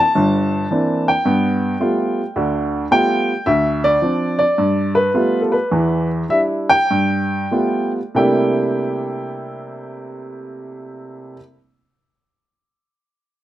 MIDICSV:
0, 0, Header, 1, 2, 480
1, 0, Start_track
1, 0, Tempo, 551471
1, 1092, Time_signature, 4, 2, 24, 8
1, 3974, Tempo, 575816
1, 5414, Tempo, 619835
1, 6854, Tempo, 651466
1, 10742, End_track
2, 0, Start_track
2, 0, Title_t, "Upright piano"
2, 0, Program_c, 0, 0
2, 0, Note_on_c, 0, 81, 118
2, 133, Note_on_c, 0, 43, 74
2, 135, Note_on_c, 0, 31, 71
2, 552, Note_off_c, 0, 31, 0
2, 552, Note_off_c, 0, 43, 0
2, 616, Note_on_c, 0, 52, 52
2, 617, Note_on_c, 0, 58, 52
2, 620, Note_on_c, 0, 60, 47
2, 624, Note_on_c, 0, 62, 57
2, 942, Note_on_c, 0, 79, 87
2, 960, Note_off_c, 0, 52, 0
2, 960, Note_off_c, 0, 58, 0
2, 962, Note_off_c, 0, 60, 0
2, 964, Note_off_c, 0, 62, 0
2, 969, Note_off_c, 0, 81, 0
2, 1091, Note_on_c, 0, 43, 71
2, 1093, Note_on_c, 0, 59, 73
2, 1510, Note_off_c, 0, 43, 0
2, 1510, Note_off_c, 0, 59, 0
2, 1568, Note_on_c, 0, 55, 48
2, 1571, Note_on_c, 0, 57, 41
2, 1574, Note_on_c, 0, 59, 48
2, 1574, Note_on_c, 0, 65, 62
2, 1915, Note_off_c, 0, 55, 0
2, 1916, Note_off_c, 0, 57, 0
2, 1918, Note_off_c, 0, 59, 0
2, 1918, Note_off_c, 0, 65, 0
2, 2053, Note_on_c, 0, 38, 64
2, 2054, Note_on_c, 0, 50, 75
2, 2470, Note_off_c, 0, 38, 0
2, 2470, Note_off_c, 0, 50, 0
2, 2494, Note_off_c, 0, 79, 0
2, 2532, Note_on_c, 0, 55, 53
2, 2533, Note_on_c, 0, 57, 45
2, 2534, Note_on_c, 0, 59, 51
2, 2536, Note_on_c, 0, 65, 60
2, 2541, Note_on_c, 0, 79, 99
2, 2876, Note_off_c, 0, 55, 0
2, 2877, Note_off_c, 0, 57, 0
2, 2877, Note_off_c, 0, 59, 0
2, 2878, Note_off_c, 0, 65, 0
2, 3013, Note_on_c, 0, 76, 89
2, 3017, Note_on_c, 0, 38, 72
2, 3028, Note_off_c, 0, 79, 0
2, 3344, Note_on_c, 0, 74, 100
2, 3352, Note_off_c, 0, 76, 0
2, 3432, Note_off_c, 0, 38, 0
2, 3497, Note_on_c, 0, 53, 45
2, 3498, Note_on_c, 0, 60, 50
2, 3503, Note_on_c, 0, 62, 53
2, 3805, Note_off_c, 0, 74, 0
2, 3818, Note_on_c, 0, 74, 88
2, 3842, Note_off_c, 0, 53, 0
2, 3842, Note_off_c, 0, 60, 0
2, 3845, Note_off_c, 0, 62, 0
2, 3987, Note_on_c, 0, 43, 69
2, 4262, Note_off_c, 0, 74, 0
2, 4294, Note_on_c, 0, 71, 88
2, 4391, Note_off_c, 0, 43, 0
2, 4453, Note_on_c, 0, 55, 51
2, 4456, Note_on_c, 0, 57, 49
2, 4457, Note_on_c, 0, 59, 46
2, 4459, Note_on_c, 0, 65, 58
2, 4661, Note_off_c, 0, 71, 0
2, 4683, Note_on_c, 0, 69, 53
2, 4769, Note_on_c, 0, 71, 65
2, 4770, Note_off_c, 0, 69, 0
2, 4793, Note_off_c, 0, 55, 0
2, 4795, Note_off_c, 0, 57, 0
2, 4795, Note_off_c, 0, 59, 0
2, 4796, Note_off_c, 0, 65, 0
2, 4932, Note_on_c, 0, 40, 67
2, 4934, Note_on_c, 0, 52, 64
2, 5224, Note_off_c, 0, 71, 0
2, 5355, Note_off_c, 0, 40, 0
2, 5356, Note_off_c, 0, 52, 0
2, 5411, Note_on_c, 0, 55, 45
2, 5418, Note_on_c, 0, 62, 44
2, 5418, Note_on_c, 0, 64, 57
2, 5420, Note_on_c, 0, 76, 82
2, 5492, Note_off_c, 0, 76, 0
2, 5725, Note_on_c, 0, 79, 110
2, 5747, Note_off_c, 0, 55, 0
2, 5750, Note_off_c, 0, 62, 0
2, 5750, Note_off_c, 0, 64, 0
2, 5889, Note_on_c, 0, 43, 70
2, 6302, Note_off_c, 0, 43, 0
2, 6359, Note_on_c, 0, 55, 48
2, 6363, Note_on_c, 0, 57, 45
2, 6363, Note_on_c, 0, 59, 48
2, 6367, Note_on_c, 0, 65, 50
2, 6664, Note_off_c, 0, 79, 0
2, 6714, Note_off_c, 0, 55, 0
2, 6716, Note_off_c, 0, 57, 0
2, 6716, Note_off_c, 0, 59, 0
2, 6718, Note_off_c, 0, 65, 0
2, 6849, Note_on_c, 0, 48, 64
2, 6854, Note_on_c, 0, 55, 58
2, 6860, Note_on_c, 0, 57, 61
2, 6862, Note_on_c, 0, 79, 70
2, 6863, Note_on_c, 0, 58, 64
2, 6871, Note_on_c, 0, 62, 53
2, 6873, Note_on_c, 0, 64, 73
2, 9193, Note_off_c, 0, 79, 0
2, 9210, Note_off_c, 0, 48, 0
2, 9216, Note_off_c, 0, 55, 0
2, 9221, Note_off_c, 0, 57, 0
2, 9225, Note_off_c, 0, 58, 0
2, 9232, Note_off_c, 0, 62, 0
2, 9235, Note_off_c, 0, 64, 0
2, 10742, End_track
0, 0, End_of_file